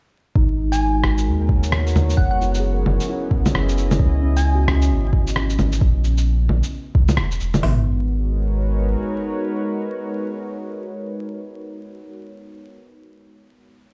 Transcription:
0.35 1.03 G#1 medium
0.35 2.17 G#3 medium
0.35 1.75 D#4 medium
0.35 kick loud
0.42 2.91 F#4 medium
0.57 2.18 A#4 medium
0.72 0.96 G#5 medium
0.72 shaker medium
0.96 2.91 C#5 medium
1.02 1.29 G#1 loud
1.02 5.81 B3 medium
1.02 cross-stick medium
1.18 shaker medium
1.27 1.94 D#2 medium
1.49 kick loud
1.64 shaker medium
1.72 cross-stick loud
1.87 shaker soft
1.95 2.16 D#2 medium
1.95 low bongo medium
1.95 shaker soft
2.10 shaker medium
2.17 2.84 F#1 medium
2.17 4.00 F#3 medium
2.17 2.26 F#5 medium
2.17 kick loud
2.27 5.81 C#4 medium
2.27 2.37 F#5 medium
2.41 3.07 E4 medium
2.41 shaker soft
2.47 5.81 E4 medium
2.54 shaker medium
2.59 3.93 G#4 medium
2.73 4.07 A#4 medium
2.83 2.99 F#1 loud
2.83 4.73 G#4 medium
2.83 low bongo soft
3.00 5.81 D#5 medium
3.00 shaker medium
3.08 4.18 E4 medium
3.31 3.53 B1 medium
3.31 kick loud
3.46 low bongo medium
3.46 shaker medium
3.55 3.99 F#1 loud
3.55 cross-stick loud
3.69 shaker soft
3.78 shaker soft
3.91 low bongo medium
3.91 shaker medium
3.99 4.67 C#2 loud
3.99 5.82 C#3 medium
3.99 kick loud
4.22 4.66 C#4 medium
4.37 4.60 G#5 medium
4.37 shaker medium
4.41 5.75 E4 medium
4.55 5.89 F#4 medium
4.67 4.92 C#2 loud
4.67 6.00 C#4 medium
4.67 cross-stick loud
4.82 shaker medium
4.91 5.58 G#1 medium
5.13 kick loud
5.27 shaker medium
5.36 cross-stick loud
5.50 shaker soft
5.59 5.80 G#1 medium
5.59 low bongo soft
5.59 shaker soft
5.72 shaker medium
5.81 6.49 A#1 loud
5.81 kick loud
6.04 shaker soft
6.18 shaker medium
6.49 6.62 A#1 loud
6.49 low bongo soft
6.63 shaker medium
6.95 7.20 C#2 medium
6.95 kick loud
7.09 low bongo medium
7.09 shaker medium
7.17 7.39 E1 loud
7.17 cross-stick loud
7.31 shaker soft
7.40 7.62 E1 medium
7.40 shaker soft
7.54 low bongo medium
7.54 shaker medium
7.63 8.96 G#1 loud
7.63 12.03 G#3 medium
7.63 12.18 B3 medium
7.63 snare loud
7.63 floor tom loud
7.63 open hi-hat medium
7.72 12.03 D#4 medium
7.79 12.03 F#4 medium
7.84 12.03 A#4 medium
7.92 12.03 B4 medium
7.99 12.03 C#5 medium

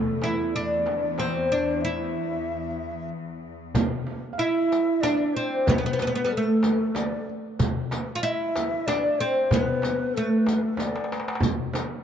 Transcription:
0.00 3.82 E2 medium
0.00 0.25 A3 medium
0.00 0.22 A4 medium
0.22 0.53 E4 medium
0.22 darbuka tek medium
0.22 frame drum medium
0.53 1.15 D4 medium
0.53 0.98 D5 medium
0.86 darbuka tek medium
0.86 frame drum medium
1.00 1.15 D5 medium
1.16 1.51 C4 medium
1.16 1.83 C5 medium
1.16 darbuka tek medium
1.16 frame drum medium
1.52 1.84 D4 medium
1.81 3.08 E4 medium
1.81 3.10 E5 medium
3.75 riq medium
3.75 darbuka dum medium
3.75 frame drum loud
4.07 frame drum medium
4.33 4.40 F5 medium
4.38 5.03 E4 medium
4.38 5.05 E5 medium
4.38 5.03 E5 medium
4.38 darbuka ka soft
4.72 riq soft
4.72 darbuka tek medium
5.01 5.36 D4 medium
5.01 5.35 D5 medium
5.01 5.69 D5 medium
5.01 riq soft
5.01 darbuka tek medium
5.01 frame drum medium
5.34 5.69 C4 medium
5.34 5.67 C5 medium
5.34 darbuka ka soft
5.66 5.76 B3 medium
5.66 5.75 B4 medium
5.66 6.23 B4 medium
5.66 riq medium
5.66 frame drum loud
5.66 darbuka dum loud
5.74 5.83 C5 medium
5.78 5.84 B3 medium
5.78 5.93 B4 medium
5.86 5.92 B3 medium
5.91 5.99 B3 medium
5.91 6.01 C5 medium
5.99 6.06 B3 medium
5.99 6.09 B4 medium
5.99 riq soft
5.99 darbuka tek medium
5.99 frame drum medium
6.07 6.14 B3 medium
6.07 6.17 C5 medium
6.15 6.22 B3 medium
6.15 6.32 B4 medium
6.24 6.32 G3 medium
6.24 6.30 B3 medium
6.24 6.32 B4 soft
6.31 6.97 A4 medium
6.31 7.24 A4 medium
6.31 darbuka ka soft
6.37 7.27 A3 medium
6.63 riq soft
6.63 darbuka tek medium
6.63 frame drum medium
6.95 7.28 D5 medium
6.95 riq soft
6.95 darbuka tek medium
6.95 frame drum medium
7.29 darbuka ka soft
7.59 riq medium
7.59 frame drum medium
7.59 darbuka dum medium
7.91 riq soft
7.91 darbuka tek medium
7.91 frame drum medium
8.15 8.23 F4 medium
8.15 8.24 F5 medium
8.22 8.87 E4 loud
8.22 8.35 D#5 medium
8.22 8.90 E5 medium
8.22 darbuka ka soft
8.35 8.88 E5 medium
8.56 riq soft
8.56 darbuka tek medium
8.56 frame drum medium
8.86 9.20 D4 medium
8.86 9.20 D5 medium
8.86 9.21 D5 medium
8.86 riq soft
8.86 darbuka tek medium
8.86 frame drum medium
9.19 9.53 C4 medium
9.19 9.53 C5 medium
9.19 darbuka ka soft
9.51 10.17 B3 medium
9.51 10.16 B4 medium
9.51 10.18 B4 medium
9.51 riq medium
9.51 frame drum medium
9.51 darbuka dum medium
9.82 riq medium
9.82 darbuka tek medium
9.82 frame drum medium
10.14 11.08 A3 medium
10.14 10.25 A4 medium
10.14 11.07 A4 medium
10.14 riq soft
10.14 darbuka ka soft
10.23 10.32 B4 medium
10.31 10.39 A4 medium
10.38 10.49 B4 medium
10.46 10.56 A4 medium
10.46 riq medium
10.46 darbuka tek medium
10.46 frame drum medium
10.55 10.64 B4 medium
10.63 10.80 A4 medium
10.77 11.11 D5 medium
10.77 riq soft
10.77 darbuka tek medium
10.77 frame drum medium
10.87 darbuka ka medium
10.96 darbuka tek medium
11.04 darbuka ka medium
11.12 riq soft
11.12 darbuka tek medium
11.20 darbuka ka medium
11.28 darbuka tek medium
11.35 darbuka ka medium
11.40 riq medium
11.40 frame drum loud
11.40 darbuka dum medium
11.74 riq medium
11.74 darbuka tek medium
11.74 frame drum medium

